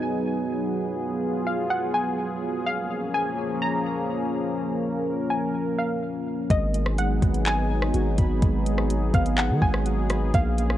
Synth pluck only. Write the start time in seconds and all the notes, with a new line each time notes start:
Already playing: G#5
1.47 F5
1.70 F#5
1.94 G#5
2.67 F5
3.14 G#5
3.62 A#5
5.30 G#5
5.78 F5
6.51 D#5
6.98 F#5
7.46 G#5
9.15 F5
9.38 F#5
9.62 G#5
10.35 F5